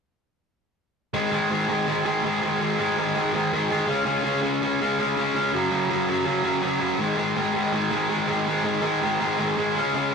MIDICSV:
0, 0, Header, 1, 2, 480
1, 0, Start_track
1, 0, Tempo, 366972
1, 1482, Time_signature, 4, 2, 24, 8
1, 13270, End_track
2, 0, Start_track
2, 0, Title_t, "Overdriven electric guitar"
2, 0, Program_c, 0, 29
2, 1488, Note_on_c, 0, 44, 87
2, 1489, Note_on_c, 0, 51, 98
2, 1495, Note_on_c, 0, 56, 106
2, 1709, Note_off_c, 0, 44, 0
2, 1713, Note_off_c, 0, 51, 0
2, 1714, Note_on_c, 0, 44, 79
2, 1729, Note_on_c, 0, 51, 84
2, 1730, Note_off_c, 0, 56, 0
2, 1735, Note_on_c, 0, 56, 89
2, 1949, Note_off_c, 0, 44, 0
2, 1950, Note_off_c, 0, 51, 0
2, 1954, Note_on_c, 0, 44, 87
2, 1965, Note_on_c, 0, 51, 85
2, 1967, Note_off_c, 0, 56, 0
2, 1972, Note_on_c, 0, 56, 97
2, 2186, Note_off_c, 0, 44, 0
2, 2191, Note_off_c, 0, 51, 0
2, 2201, Note_on_c, 0, 44, 74
2, 2206, Note_on_c, 0, 51, 77
2, 2213, Note_off_c, 0, 56, 0
2, 2218, Note_on_c, 0, 56, 91
2, 2431, Note_off_c, 0, 44, 0
2, 2438, Note_off_c, 0, 51, 0
2, 2446, Note_on_c, 0, 44, 78
2, 2453, Note_on_c, 0, 51, 80
2, 2457, Note_off_c, 0, 56, 0
2, 2463, Note_on_c, 0, 56, 84
2, 2660, Note_off_c, 0, 44, 0
2, 2670, Note_off_c, 0, 51, 0
2, 2675, Note_on_c, 0, 44, 96
2, 2679, Note_off_c, 0, 56, 0
2, 2685, Note_on_c, 0, 56, 99
2, 2686, Note_on_c, 0, 51, 101
2, 2906, Note_off_c, 0, 44, 0
2, 2919, Note_off_c, 0, 51, 0
2, 2921, Note_on_c, 0, 44, 77
2, 2934, Note_off_c, 0, 56, 0
2, 2935, Note_on_c, 0, 51, 74
2, 2939, Note_on_c, 0, 56, 82
2, 3155, Note_off_c, 0, 44, 0
2, 3161, Note_off_c, 0, 51, 0
2, 3170, Note_on_c, 0, 44, 81
2, 3173, Note_off_c, 0, 56, 0
2, 3176, Note_on_c, 0, 51, 80
2, 3178, Note_on_c, 0, 56, 89
2, 3389, Note_off_c, 0, 44, 0
2, 3397, Note_off_c, 0, 51, 0
2, 3405, Note_on_c, 0, 44, 99
2, 3413, Note_off_c, 0, 56, 0
2, 3413, Note_on_c, 0, 51, 105
2, 3418, Note_on_c, 0, 56, 107
2, 3618, Note_off_c, 0, 44, 0
2, 3626, Note_off_c, 0, 51, 0
2, 3634, Note_on_c, 0, 44, 79
2, 3642, Note_on_c, 0, 51, 80
2, 3649, Note_off_c, 0, 56, 0
2, 3654, Note_on_c, 0, 56, 94
2, 3869, Note_off_c, 0, 44, 0
2, 3878, Note_off_c, 0, 51, 0
2, 3885, Note_on_c, 0, 44, 83
2, 3894, Note_on_c, 0, 51, 94
2, 3903, Note_off_c, 0, 56, 0
2, 3908, Note_on_c, 0, 56, 94
2, 4098, Note_off_c, 0, 44, 0
2, 4109, Note_off_c, 0, 51, 0
2, 4114, Note_on_c, 0, 44, 86
2, 4125, Note_on_c, 0, 51, 90
2, 4130, Note_off_c, 0, 56, 0
2, 4136, Note_on_c, 0, 56, 93
2, 4350, Note_off_c, 0, 44, 0
2, 4354, Note_off_c, 0, 51, 0
2, 4362, Note_off_c, 0, 56, 0
2, 4366, Note_on_c, 0, 44, 77
2, 4369, Note_on_c, 0, 51, 90
2, 4378, Note_on_c, 0, 56, 86
2, 4584, Note_off_c, 0, 44, 0
2, 4597, Note_off_c, 0, 51, 0
2, 4600, Note_on_c, 0, 44, 90
2, 4605, Note_off_c, 0, 56, 0
2, 4612, Note_on_c, 0, 51, 106
2, 4621, Note_on_c, 0, 56, 108
2, 4820, Note_off_c, 0, 44, 0
2, 4829, Note_off_c, 0, 51, 0
2, 4835, Note_on_c, 0, 44, 81
2, 4841, Note_off_c, 0, 56, 0
2, 4845, Note_on_c, 0, 51, 81
2, 4856, Note_on_c, 0, 56, 88
2, 5048, Note_off_c, 0, 56, 0
2, 5059, Note_off_c, 0, 51, 0
2, 5064, Note_off_c, 0, 44, 0
2, 5064, Note_on_c, 0, 49, 94
2, 5064, Note_on_c, 0, 56, 105
2, 5081, Note_on_c, 0, 61, 109
2, 5276, Note_off_c, 0, 49, 0
2, 5292, Note_off_c, 0, 56, 0
2, 5292, Note_on_c, 0, 49, 94
2, 5304, Note_off_c, 0, 61, 0
2, 5308, Note_on_c, 0, 56, 94
2, 5309, Note_on_c, 0, 61, 106
2, 5523, Note_off_c, 0, 49, 0
2, 5523, Note_off_c, 0, 56, 0
2, 5539, Note_on_c, 0, 49, 84
2, 5539, Note_on_c, 0, 56, 93
2, 5546, Note_off_c, 0, 61, 0
2, 5551, Note_on_c, 0, 61, 96
2, 5758, Note_off_c, 0, 49, 0
2, 5768, Note_off_c, 0, 56, 0
2, 5774, Note_on_c, 0, 49, 89
2, 5783, Note_off_c, 0, 61, 0
2, 5784, Note_on_c, 0, 56, 89
2, 5788, Note_on_c, 0, 61, 100
2, 6017, Note_off_c, 0, 49, 0
2, 6030, Note_off_c, 0, 56, 0
2, 6033, Note_on_c, 0, 49, 78
2, 6046, Note_on_c, 0, 56, 86
2, 6056, Note_off_c, 0, 61, 0
2, 6061, Note_on_c, 0, 61, 89
2, 6263, Note_off_c, 0, 49, 0
2, 6271, Note_off_c, 0, 56, 0
2, 6278, Note_on_c, 0, 49, 89
2, 6284, Note_off_c, 0, 61, 0
2, 6287, Note_on_c, 0, 56, 90
2, 6300, Note_on_c, 0, 61, 86
2, 6506, Note_off_c, 0, 49, 0
2, 6516, Note_off_c, 0, 56, 0
2, 6522, Note_off_c, 0, 61, 0
2, 6522, Note_on_c, 0, 49, 99
2, 6532, Note_on_c, 0, 56, 105
2, 6538, Note_on_c, 0, 61, 108
2, 6743, Note_off_c, 0, 49, 0
2, 6752, Note_off_c, 0, 56, 0
2, 6758, Note_on_c, 0, 49, 74
2, 6763, Note_off_c, 0, 61, 0
2, 6767, Note_on_c, 0, 56, 76
2, 6779, Note_on_c, 0, 61, 82
2, 6966, Note_off_c, 0, 49, 0
2, 6976, Note_off_c, 0, 56, 0
2, 6981, Note_on_c, 0, 49, 74
2, 6991, Note_on_c, 0, 56, 89
2, 6992, Note_off_c, 0, 61, 0
2, 7008, Note_on_c, 0, 61, 90
2, 7209, Note_off_c, 0, 49, 0
2, 7221, Note_on_c, 0, 42, 85
2, 7222, Note_off_c, 0, 56, 0
2, 7225, Note_on_c, 0, 49, 95
2, 7230, Note_off_c, 0, 61, 0
2, 7244, Note_on_c, 0, 54, 107
2, 7453, Note_off_c, 0, 42, 0
2, 7464, Note_off_c, 0, 49, 0
2, 7468, Note_off_c, 0, 54, 0
2, 7469, Note_on_c, 0, 42, 82
2, 7480, Note_on_c, 0, 49, 82
2, 7484, Note_on_c, 0, 54, 89
2, 7698, Note_off_c, 0, 42, 0
2, 7704, Note_off_c, 0, 49, 0
2, 7714, Note_on_c, 0, 42, 85
2, 7720, Note_on_c, 0, 49, 83
2, 7721, Note_off_c, 0, 54, 0
2, 7736, Note_on_c, 0, 54, 99
2, 7940, Note_off_c, 0, 42, 0
2, 7945, Note_off_c, 0, 49, 0
2, 7952, Note_off_c, 0, 54, 0
2, 7956, Note_on_c, 0, 42, 79
2, 7961, Note_on_c, 0, 49, 87
2, 7968, Note_on_c, 0, 54, 92
2, 8167, Note_off_c, 0, 49, 0
2, 8169, Note_off_c, 0, 42, 0
2, 8180, Note_off_c, 0, 54, 0
2, 8183, Note_on_c, 0, 49, 84
2, 8184, Note_on_c, 0, 42, 82
2, 8196, Note_on_c, 0, 54, 91
2, 8400, Note_off_c, 0, 42, 0
2, 8414, Note_off_c, 0, 49, 0
2, 8415, Note_on_c, 0, 42, 88
2, 8416, Note_off_c, 0, 54, 0
2, 8430, Note_on_c, 0, 49, 93
2, 8432, Note_on_c, 0, 54, 102
2, 8638, Note_off_c, 0, 42, 0
2, 8647, Note_off_c, 0, 54, 0
2, 8648, Note_off_c, 0, 49, 0
2, 8653, Note_on_c, 0, 42, 73
2, 8663, Note_on_c, 0, 54, 89
2, 8664, Note_on_c, 0, 49, 80
2, 8864, Note_off_c, 0, 42, 0
2, 8874, Note_off_c, 0, 49, 0
2, 8880, Note_on_c, 0, 42, 75
2, 8883, Note_off_c, 0, 54, 0
2, 8890, Note_on_c, 0, 49, 81
2, 8899, Note_on_c, 0, 54, 90
2, 9126, Note_off_c, 0, 42, 0
2, 9131, Note_off_c, 0, 49, 0
2, 9134, Note_on_c, 0, 44, 93
2, 9136, Note_off_c, 0, 54, 0
2, 9144, Note_on_c, 0, 51, 105
2, 9151, Note_on_c, 0, 56, 102
2, 9357, Note_off_c, 0, 44, 0
2, 9362, Note_on_c, 0, 44, 85
2, 9365, Note_off_c, 0, 51, 0
2, 9376, Note_off_c, 0, 56, 0
2, 9380, Note_on_c, 0, 51, 92
2, 9381, Note_on_c, 0, 56, 98
2, 9619, Note_off_c, 0, 51, 0
2, 9620, Note_off_c, 0, 44, 0
2, 9625, Note_on_c, 0, 44, 85
2, 9634, Note_on_c, 0, 51, 93
2, 9638, Note_off_c, 0, 56, 0
2, 9643, Note_on_c, 0, 56, 100
2, 9836, Note_off_c, 0, 44, 0
2, 9847, Note_off_c, 0, 51, 0
2, 9851, Note_on_c, 0, 44, 87
2, 9863, Note_on_c, 0, 51, 78
2, 9864, Note_off_c, 0, 56, 0
2, 9869, Note_on_c, 0, 56, 84
2, 10081, Note_off_c, 0, 44, 0
2, 10092, Note_off_c, 0, 51, 0
2, 10097, Note_on_c, 0, 44, 80
2, 10108, Note_on_c, 0, 51, 80
2, 10110, Note_off_c, 0, 56, 0
2, 10116, Note_on_c, 0, 56, 91
2, 10315, Note_off_c, 0, 44, 0
2, 10325, Note_off_c, 0, 51, 0
2, 10331, Note_on_c, 0, 44, 90
2, 10340, Note_on_c, 0, 51, 105
2, 10348, Note_off_c, 0, 56, 0
2, 10353, Note_on_c, 0, 56, 101
2, 10553, Note_off_c, 0, 44, 0
2, 10561, Note_off_c, 0, 51, 0
2, 10568, Note_on_c, 0, 44, 81
2, 10576, Note_off_c, 0, 56, 0
2, 10577, Note_on_c, 0, 51, 76
2, 10581, Note_on_c, 0, 56, 84
2, 10798, Note_off_c, 0, 44, 0
2, 10814, Note_off_c, 0, 51, 0
2, 10814, Note_on_c, 0, 44, 79
2, 10829, Note_off_c, 0, 56, 0
2, 10830, Note_on_c, 0, 51, 94
2, 10834, Note_on_c, 0, 56, 89
2, 11055, Note_off_c, 0, 44, 0
2, 11068, Note_off_c, 0, 51, 0
2, 11071, Note_on_c, 0, 44, 92
2, 11082, Note_off_c, 0, 56, 0
2, 11083, Note_on_c, 0, 51, 105
2, 11088, Note_on_c, 0, 56, 101
2, 11286, Note_off_c, 0, 44, 0
2, 11301, Note_off_c, 0, 51, 0
2, 11302, Note_on_c, 0, 44, 82
2, 11314, Note_off_c, 0, 56, 0
2, 11316, Note_on_c, 0, 51, 89
2, 11320, Note_on_c, 0, 56, 96
2, 11522, Note_off_c, 0, 44, 0
2, 11522, Note_off_c, 0, 51, 0
2, 11537, Note_on_c, 0, 44, 92
2, 11538, Note_on_c, 0, 51, 92
2, 11547, Note_off_c, 0, 56, 0
2, 11553, Note_on_c, 0, 56, 93
2, 11777, Note_off_c, 0, 44, 0
2, 11788, Note_off_c, 0, 51, 0
2, 11793, Note_on_c, 0, 44, 74
2, 11803, Note_on_c, 0, 51, 81
2, 11811, Note_off_c, 0, 56, 0
2, 11816, Note_on_c, 0, 56, 84
2, 12018, Note_off_c, 0, 44, 0
2, 12026, Note_off_c, 0, 51, 0
2, 12028, Note_off_c, 0, 56, 0
2, 12034, Note_on_c, 0, 44, 84
2, 12042, Note_on_c, 0, 51, 80
2, 12044, Note_on_c, 0, 56, 99
2, 12256, Note_off_c, 0, 44, 0
2, 12266, Note_off_c, 0, 51, 0
2, 12266, Note_off_c, 0, 56, 0
2, 12271, Note_on_c, 0, 44, 98
2, 12281, Note_on_c, 0, 51, 103
2, 12281, Note_on_c, 0, 56, 106
2, 12494, Note_off_c, 0, 44, 0
2, 12506, Note_off_c, 0, 51, 0
2, 12509, Note_on_c, 0, 44, 81
2, 12514, Note_off_c, 0, 56, 0
2, 12522, Note_on_c, 0, 51, 73
2, 12529, Note_on_c, 0, 56, 84
2, 12741, Note_off_c, 0, 44, 0
2, 12747, Note_off_c, 0, 51, 0
2, 12751, Note_off_c, 0, 56, 0
2, 12765, Note_on_c, 0, 49, 99
2, 12769, Note_on_c, 0, 56, 91
2, 12776, Note_on_c, 0, 61, 105
2, 12979, Note_off_c, 0, 49, 0
2, 12995, Note_on_c, 0, 49, 97
2, 12996, Note_off_c, 0, 61, 0
2, 13002, Note_off_c, 0, 56, 0
2, 13012, Note_on_c, 0, 61, 96
2, 13017, Note_on_c, 0, 56, 101
2, 13229, Note_off_c, 0, 49, 0
2, 13242, Note_off_c, 0, 56, 0
2, 13247, Note_off_c, 0, 61, 0
2, 13270, End_track
0, 0, End_of_file